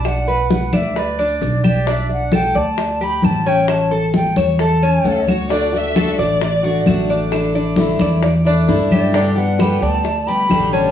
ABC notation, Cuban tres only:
X:1
M:4/4
L:1/8
Q:1/4=132
K:Amix
V:1 name="Cuban tres"
D B2 d B D2 G | D2 A d2 G2 C- | C A2 c A C2 F | D2 A d2 F2 D- |
D d2 d d D2 G | D2 B d2 G2 C |]